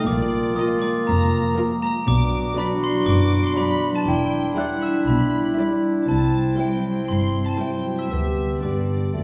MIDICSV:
0, 0, Header, 1, 11, 480
1, 0, Start_track
1, 0, Key_signature, 1, "major"
1, 0, Tempo, 500000
1, 77, Time_signature, 4, 2, 24, 8
1, 5837, Tempo, 510204
1, 8805, End_track
2, 0, Start_track
2, 0, Title_t, "Glockenspiel"
2, 0, Program_c, 0, 9
2, 63, Note_on_c, 0, 86, 72
2, 517, Note_off_c, 0, 86, 0
2, 540, Note_on_c, 0, 87, 72
2, 771, Note_off_c, 0, 87, 0
2, 784, Note_on_c, 0, 86, 72
2, 1014, Note_off_c, 0, 86, 0
2, 1028, Note_on_c, 0, 82, 76
2, 1479, Note_off_c, 0, 82, 0
2, 1750, Note_on_c, 0, 82, 78
2, 1977, Note_off_c, 0, 82, 0
2, 1995, Note_on_c, 0, 86, 84
2, 2441, Note_off_c, 0, 86, 0
2, 2476, Note_on_c, 0, 83, 74
2, 2698, Note_off_c, 0, 83, 0
2, 2724, Note_on_c, 0, 84, 75
2, 2941, Note_on_c, 0, 86, 76
2, 2942, Note_off_c, 0, 84, 0
2, 3283, Note_off_c, 0, 86, 0
2, 3329, Note_on_c, 0, 84, 69
2, 3430, Note_on_c, 0, 83, 70
2, 3435, Note_off_c, 0, 84, 0
2, 3767, Note_off_c, 0, 83, 0
2, 3797, Note_on_c, 0, 81, 70
2, 3907, Note_off_c, 0, 81, 0
2, 3920, Note_on_c, 0, 79, 71
2, 4364, Note_off_c, 0, 79, 0
2, 4398, Note_on_c, 0, 90, 71
2, 4620, Note_off_c, 0, 90, 0
2, 4632, Note_on_c, 0, 88, 62
2, 4857, Note_off_c, 0, 88, 0
2, 4871, Note_on_c, 0, 83, 67
2, 5319, Note_off_c, 0, 83, 0
2, 5842, Note_on_c, 0, 81, 76
2, 6281, Note_off_c, 0, 81, 0
2, 6328, Note_on_c, 0, 79, 55
2, 6761, Note_off_c, 0, 79, 0
2, 6781, Note_on_c, 0, 84, 61
2, 7115, Note_off_c, 0, 84, 0
2, 7156, Note_on_c, 0, 81, 52
2, 7261, Note_off_c, 0, 81, 0
2, 7275, Note_on_c, 0, 79, 45
2, 7604, Note_off_c, 0, 79, 0
2, 7631, Note_on_c, 0, 88, 48
2, 7740, Note_off_c, 0, 88, 0
2, 7750, Note_on_c, 0, 88, 56
2, 8200, Note_off_c, 0, 88, 0
2, 8235, Note_on_c, 0, 86, 40
2, 8805, Note_off_c, 0, 86, 0
2, 8805, End_track
3, 0, Start_track
3, 0, Title_t, "Violin section"
3, 0, Program_c, 1, 48
3, 82, Note_on_c, 1, 74, 65
3, 550, Note_off_c, 1, 74, 0
3, 555, Note_on_c, 1, 75, 59
3, 632, Note_off_c, 1, 75, 0
3, 779, Note_on_c, 1, 74, 61
3, 856, Note_off_c, 1, 74, 0
3, 1027, Note_on_c, 1, 82, 66
3, 1503, Note_off_c, 1, 82, 0
3, 1763, Note_on_c, 1, 82, 65
3, 1840, Note_off_c, 1, 82, 0
3, 2001, Note_on_c, 1, 86, 76
3, 2468, Note_off_c, 1, 86, 0
3, 2482, Note_on_c, 1, 83, 64
3, 2558, Note_off_c, 1, 83, 0
3, 2720, Note_on_c, 1, 84, 67
3, 2950, Note_on_c, 1, 86, 71
3, 2952, Note_off_c, 1, 84, 0
3, 3306, Note_off_c, 1, 86, 0
3, 3315, Note_on_c, 1, 84, 64
3, 3435, Note_off_c, 1, 84, 0
3, 3448, Note_on_c, 1, 83, 69
3, 3793, Note_on_c, 1, 81, 58
3, 3794, Note_off_c, 1, 83, 0
3, 3841, Note_off_c, 1, 81, 0
3, 3926, Note_on_c, 1, 79, 65
3, 4390, Note_off_c, 1, 79, 0
3, 4402, Note_on_c, 1, 78, 56
3, 4634, Note_off_c, 1, 78, 0
3, 4644, Note_on_c, 1, 76, 58
3, 4879, Note_on_c, 1, 83, 56
3, 4880, Note_off_c, 1, 76, 0
3, 5347, Note_off_c, 1, 83, 0
3, 5825, Note_on_c, 1, 81, 66
3, 6272, Note_off_c, 1, 81, 0
3, 6298, Note_on_c, 1, 79, 46
3, 6770, Note_off_c, 1, 79, 0
3, 6784, Note_on_c, 1, 84, 54
3, 7134, Note_on_c, 1, 81, 49
3, 7141, Note_off_c, 1, 84, 0
3, 7258, Note_off_c, 1, 81, 0
3, 7260, Note_on_c, 1, 79, 43
3, 7622, Note_off_c, 1, 79, 0
3, 7630, Note_on_c, 1, 76, 44
3, 7744, Note_off_c, 1, 76, 0
3, 7755, Note_on_c, 1, 76, 50
3, 8226, Note_off_c, 1, 76, 0
3, 8244, Note_on_c, 1, 74, 38
3, 8805, Note_off_c, 1, 74, 0
3, 8805, End_track
4, 0, Start_track
4, 0, Title_t, "Violin section"
4, 0, Program_c, 2, 48
4, 554, Note_on_c, 2, 70, 57
4, 913, Note_off_c, 2, 70, 0
4, 1513, Note_on_c, 2, 70, 59
4, 1872, Note_off_c, 2, 70, 0
4, 2476, Note_on_c, 2, 74, 60
4, 2832, Note_off_c, 2, 74, 0
4, 3432, Note_on_c, 2, 74, 56
4, 3790, Note_off_c, 2, 74, 0
4, 4402, Note_on_c, 2, 74, 55
4, 4757, Note_off_c, 2, 74, 0
4, 5359, Note_on_c, 2, 74, 50
4, 5716, Note_off_c, 2, 74, 0
4, 6317, Note_on_c, 2, 72, 47
4, 6668, Note_off_c, 2, 72, 0
4, 7264, Note_on_c, 2, 72, 43
4, 7621, Note_off_c, 2, 72, 0
4, 8221, Note_on_c, 2, 71, 38
4, 8587, Note_off_c, 2, 71, 0
4, 8805, End_track
5, 0, Start_track
5, 0, Title_t, "Clarinet"
5, 0, Program_c, 3, 71
5, 81, Note_on_c, 3, 65, 60
5, 1700, Note_off_c, 3, 65, 0
5, 1993, Note_on_c, 3, 66, 64
5, 3874, Note_off_c, 3, 66, 0
5, 3909, Note_on_c, 3, 64, 58
5, 7704, Note_off_c, 3, 64, 0
5, 7737, Note_on_c, 3, 67, 41
5, 8429, Note_off_c, 3, 67, 0
5, 8715, Note_on_c, 3, 66, 36
5, 8805, Note_off_c, 3, 66, 0
5, 8805, End_track
6, 0, Start_track
6, 0, Title_t, "French horn section"
6, 0, Program_c, 4, 60
6, 84, Note_on_c, 4, 65, 57
6, 88, Note_on_c, 4, 58, 62
6, 1848, Note_off_c, 4, 58, 0
6, 1848, Note_off_c, 4, 65, 0
6, 2012, Note_on_c, 4, 66, 58
6, 2019, Note_on_c, 4, 62, 61
6, 3883, Note_off_c, 4, 66, 0
6, 3923, Note_on_c, 4, 64, 54
6, 5803, Note_off_c, 4, 64, 0
6, 5842, Note_on_c, 4, 64, 50
6, 5844, Note_on_c, 4, 60, 50
6, 5848, Note_off_c, 4, 62, 0
6, 6281, Note_off_c, 4, 64, 0
6, 6282, Note_off_c, 4, 60, 0
6, 6318, Note_on_c, 4, 64, 47
6, 6321, Note_on_c, 4, 60, 45
6, 6780, Note_off_c, 4, 64, 0
6, 6781, Note_off_c, 4, 60, 0
6, 6806, Note_on_c, 4, 64, 43
6, 6807, Note_on_c, 4, 60, 41
6, 7257, Note_off_c, 4, 64, 0
6, 7258, Note_off_c, 4, 60, 0
6, 7268, Note_on_c, 4, 64, 37
6, 7269, Note_on_c, 4, 60, 40
6, 7375, Note_off_c, 4, 64, 0
6, 7511, Note_on_c, 4, 66, 38
6, 7618, Note_off_c, 4, 66, 0
6, 7738, Note_off_c, 4, 60, 0
6, 7758, Note_on_c, 4, 59, 38
6, 7758, Note_on_c, 4, 67, 40
6, 8228, Note_off_c, 4, 59, 0
6, 8228, Note_off_c, 4, 67, 0
6, 8249, Note_on_c, 4, 67, 39
6, 8251, Note_on_c, 4, 59, 41
6, 8716, Note_off_c, 4, 59, 0
6, 8716, Note_off_c, 4, 67, 0
6, 8727, Note_on_c, 4, 66, 40
6, 8733, Note_on_c, 4, 57, 39
6, 8805, Note_off_c, 4, 57, 0
6, 8805, Note_off_c, 4, 66, 0
6, 8805, End_track
7, 0, Start_track
7, 0, Title_t, "Viola section"
7, 0, Program_c, 5, 48
7, 551, Note_on_c, 5, 58, 59
7, 551, Note_on_c, 5, 65, 61
7, 912, Note_off_c, 5, 58, 0
7, 912, Note_off_c, 5, 65, 0
7, 1505, Note_on_c, 5, 58, 55
7, 1508, Note_on_c, 5, 65, 58
7, 1868, Note_off_c, 5, 58, 0
7, 1870, Note_off_c, 5, 65, 0
7, 2463, Note_on_c, 5, 62, 61
7, 2464, Note_on_c, 5, 54, 62
7, 2825, Note_off_c, 5, 54, 0
7, 2825, Note_off_c, 5, 62, 0
7, 3424, Note_on_c, 5, 62, 53
7, 3429, Note_on_c, 5, 54, 52
7, 3786, Note_off_c, 5, 62, 0
7, 3788, Note_off_c, 5, 54, 0
7, 4379, Note_on_c, 5, 55, 56
7, 4380, Note_on_c, 5, 64, 57
7, 4745, Note_off_c, 5, 55, 0
7, 4745, Note_off_c, 5, 64, 0
7, 5344, Note_on_c, 5, 64, 48
7, 5348, Note_on_c, 5, 55, 48
7, 5708, Note_off_c, 5, 64, 0
7, 5709, Note_off_c, 5, 55, 0
7, 6304, Note_on_c, 5, 64, 50
7, 6306, Note_on_c, 5, 55, 46
7, 6661, Note_off_c, 5, 55, 0
7, 6661, Note_off_c, 5, 64, 0
7, 7256, Note_on_c, 5, 55, 40
7, 7258, Note_on_c, 5, 64, 40
7, 7617, Note_off_c, 5, 55, 0
7, 7618, Note_off_c, 5, 64, 0
7, 8229, Note_on_c, 5, 55, 41
7, 8229, Note_on_c, 5, 62, 39
7, 8591, Note_off_c, 5, 55, 0
7, 8591, Note_off_c, 5, 62, 0
7, 8805, End_track
8, 0, Start_track
8, 0, Title_t, "Bassoon"
8, 0, Program_c, 6, 70
8, 79, Note_on_c, 6, 58, 62
8, 1732, Note_off_c, 6, 58, 0
8, 2001, Note_on_c, 6, 62, 61
8, 5800, Note_off_c, 6, 62, 0
8, 5839, Note_on_c, 6, 60, 54
8, 7708, Note_off_c, 6, 60, 0
8, 7747, Note_on_c, 6, 59, 40
8, 8434, Note_off_c, 6, 59, 0
8, 8712, Note_on_c, 6, 57, 39
8, 8805, Note_off_c, 6, 57, 0
8, 8805, End_track
9, 0, Start_track
9, 0, Title_t, "Harp"
9, 0, Program_c, 7, 46
9, 0, Note_on_c, 7, 48, 53
9, 0, Note_on_c, 7, 57, 43
9, 0, Note_on_c, 7, 60, 44
9, 85, Note_on_c, 7, 46, 58
9, 97, Note_off_c, 7, 57, 0
9, 100, Note_off_c, 7, 60, 0
9, 101, Note_off_c, 7, 48, 0
9, 241, Note_on_c, 7, 58, 43
9, 404, Note_on_c, 7, 53, 45
9, 548, Note_off_c, 7, 58, 0
9, 560, Note_on_c, 7, 58, 50
9, 726, Note_on_c, 7, 56, 43
9, 880, Note_off_c, 7, 58, 0
9, 891, Note_on_c, 7, 58, 46
9, 994, Note_off_c, 7, 56, 0
9, 1037, Note_off_c, 7, 53, 0
9, 1048, Note_on_c, 7, 53, 48
9, 1208, Note_off_c, 7, 58, 0
9, 1220, Note_on_c, 7, 58, 46
9, 1353, Note_off_c, 7, 53, 0
9, 1365, Note_on_c, 7, 53, 46
9, 1520, Note_off_c, 7, 58, 0
9, 1532, Note_on_c, 7, 58, 51
9, 1692, Note_on_c, 7, 56, 41
9, 1837, Note_off_c, 7, 58, 0
9, 1849, Note_on_c, 7, 58, 44
9, 1957, Note_off_c, 7, 56, 0
9, 2013, Note_on_c, 7, 47, 57
9, 2020, Note_off_c, 7, 53, 0
9, 2021, Note_off_c, 7, 46, 0
9, 2022, Note_off_c, 7, 58, 0
9, 2169, Note_on_c, 7, 54, 43
9, 2321, Note_on_c, 7, 59, 44
9, 2468, Note_off_c, 7, 54, 0
9, 2479, Note_on_c, 7, 54, 50
9, 2644, Note_on_c, 7, 52, 39
9, 2789, Note_off_c, 7, 54, 0
9, 2801, Note_on_c, 7, 54, 48
9, 2911, Note_off_c, 7, 52, 0
9, 2948, Note_off_c, 7, 59, 0
9, 2959, Note_on_c, 7, 59, 45
9, 3102, Note_off_c, 7, 54, 0
9, 3113, Note_on_c, 7, 54, 44
9, 3268, Note_off_c, 7, 59, 0
9, 3280, Note_on_c, 7, 59, 45
9, 3422, Note_off_c, 7, 54, 0
9, 3434, Note_on_c, 7, 54, 44
9, 3595, Note_on_c, 7, 52, 38
9, 3743, Note_off_c, 7, 54, 0
9, 3754, Note_on_c, 7, 54, 43
9, 3866, Note_off_c, 7, 52, 0
9, 3909, Note_on_c, 7, 52, 55
9, 3933, Note_off_c, 7, 54, 0
9, 3941, Note_off_c, 7, 47, 0
9, 4068, Note_on_c, 7, 64, 41
9, 4229, Note_on_c, 7, 55, 41
9, 4374, Note_off_c, 7, 64, 0
9, 4386, Note_on_c, 7, 64, 45
9, 4544, Note_on_c, 7, 62, 37
9, 4694, Note_off_c, 7, 64, 0
9, 4705, Note_on_c, 7, 64, 43
9, 4822, Note_off_c, 7, 62, 0
9, 4858, Note_off_c, 7, 55, 0
9, 4870, Note_on_c, 7, 55, 41
9, 5023, Note_off_c, 7, 64, 0
9, 5035, Note_on_c, 7, 64, 40
9, 5182, Note_off_c, 7, 55, 0
9, 5193, Note_on_c, 7, 55, 41
9, 5344, Note_off_c, 7, 64, 0
9, 5356, Note_on_c, 7, 64, 42
9, 5522, Note_on_c, 7, 62, 33
9, 5674, Note_off_c, 7, 64, 0
9, 5686, Note_on_c, 7, 64, 38
9, 5792, Note_off_c, 7, 62, 0
9, 5849, Note_on_c, 7, 48, 50
9, 5853, Note_off_c, 7, 52, 0
9, 5858, Note_off_c, 7, 59, 0
9, 5994, Note_off_c, 7, 55, 0
9, 6156, Note_on_c, 7, 60, 37
9, 6317, Note_on_c, 7, 55, 40
9, 6470, Note_on_c, 7, 54, 33
9, 6622, Note_off_c, 7, 55, 0
9, 6633, Note_on_c, 7, 55, 39
9, 6739, Note_off_c, 7, 54, 0
9, 6781, Note_off_c, 7, 60, 0
9, 6792, Note_on_c, 7, 60, 35
9, 6941, Note_off_c, 7, 55, 0
9, 6952, Note_on_c, 7, 55, 34
9, 7096, Note_off_c, 7, 60, 0
9, 7108, Note_on_c, 7, 60, 33
9, 7258, Note_off_c, 7, 55, 0
9, 7269, Note_on_c, 7, 55, 36
9, 7424, Note_on_c, 7, 54, 27
9, 7572, Note_off_c, 7, 55, 0
9, 7583, Note_on_c, 7, 55, 30
9, 7697, Note_off_c, 7, 54, 0
9, 7746, Note_on_c, 7, 50, 37
9, 7766, Note_off_c, 7, 60, 0
9, 7769, Note_off_c, 7, 64, 0
9, 7770, Note_off_c, 7, 48, 0
9, 7909, Note_on_c, 7, 62, 29
9, 8061, Note_off_c, 7, 55, 0
9, 8072, Note_on_c, 7, 55, 29
9, 8222, Note_off_c, 7, 62, 0
9, 8233, Note_on_c, 7, 62, 36
9, 8395, Note_on_c, 7, 60, 28
9, 8542, Note_off_c, 7, 62, 0
9, 8553, Note_on_c, 7, 62, 31
9, 8669, Note_off_c, 7, 60, 0
9, 8702, Note_off_c, 7, 50, 0
9, 8713, Note_on_c, 7, 50, 38
9, 8737, Note_off_c, 7, 55, 0
9, 8805, Note_off_c, 7, 50, 0
9, 8805, Note_off_c, 7, 62, 0
9, 8805, End_track
10, 0, Start_track
10, 0, Title_t, "Cello section"
10, 0, Program_c, 8, 48
10, 80, Note_on_c, 8, 46, 69
10, 458, Note_off_c, 8, 46, 0
10, 1039, Note_on_c, 8, 41, 73
10, 1418, Note_off_c, 8, 41, 0
10, 1995, Note_on_c, 8, 47, 67
10, 2374, Note_off_c, 8, 47, 0
10, 2950, Note_on_c, 8, 42, 65
10, 3332, Note_off_c, 8, 42, 0
10, 3915, Note_on_c, 8, 40, 62
10, 4294, Note_off_c, 8, 40, 0
10, 4877, Note_on_c, 8, 47, 62
10, 5256, Note_off_c, 8, 47, 0
10, 5835, Note_on_c, 8, 36, 56
10, 6211, Note_off_c, 8, 36, 0
10, 6782, Note_on_c, 8, 43, 51
10, 7160, Note_off_c, 8, 43, 0
10, 7742, Note_on_c, 8, 38, 47
10, 8127, Note_off_c, 8, 38, 0
10, 8233, Note_on_c, 8, 43, 44
10, 8683, Note_off_c, 8, 43, 0
10, 8719, Note_on_c, 8, 42, 45
10, 8795, Note_off_c, 8, 42, 0
10, 8805, End_track
11, 0, Start_track
11, 0, Title_t, "Double bass section"
11, 0, Program_c, 10, 48
11, 72, Note_on_c, 10, 34, 68
11, 454, Note_off_c, 10, 34, 0
11, 1025, Note_on_c, 10, 29, 72
11, 1411, Note_off_c, 10, 29, 0
11, 1994, Note_on_c, 10, 35, 65
11, 2373, Note_off_c, 10, 35, 0
11, 2951, Note_on_c, 10, 30, 68
11, 3333, Note_off_c, 10, 30, 0
11, 3906, Note_on_c, 10, 28, 63
11, 4289, Note_off_c, 10, 28, 0
11, 4871, Note_on_c, 10, 35, 64
11, 5252, Note_off_c, 10, 35, 0
11, 5838, Note_on_c, 10, 36, 59
11, 6213, Note_off_c, 10, 36, 0
11, 6788, Note_on_c, 10, 31, 55
11, 7163, Note_off_c, 10, 31, 0
11, 7749, Note_on_c, 10, 38, 46
11, 8131, Note_off_c, 10, 38, 0
11, 8714, Note_on_c, 10, 38, 47
11, 8805, Note_off_c, 10, 38, 0
11, 8805, End_track
0, 0, End_of_file